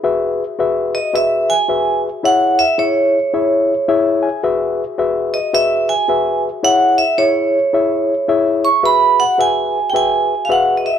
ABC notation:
X:1
M:4/4
L:1/16
Q:"Swing" 1/4=109
K:E
V:1 name="Vibraphone"
z6 d2 e2 g4 z2 | f2 e2 c8 z4 | z6 d2 e2 g4 z2 | f2 e2 c8 z2 c'2 |
b2 f2 g3- g/2 =g/2 ^g3- g/2 =f/2 ^f3/2 d/2 e2 |]
V:2 name="Reed electric piano"
[FGBe]2 z2 [FGBe]2 z2 [FGBe]2 z2 [FGBe]2 z2 | [EGce]2 z2 [EGce]2 z2 [EGce]2 z2 [EGce]2 g2 | [FGBe]2 z2 [FGBe]2 z2 [FGBe]2 z2 [FGBe]2 z2 | [EGce]2 z2 [EGce]2 z2 [EGce]2 z2 [EGce]2 z2 |
[FGBe]2 z2 [FGBe]2 z2 [FGBe]2 z2 [FGBe]2 z2 |]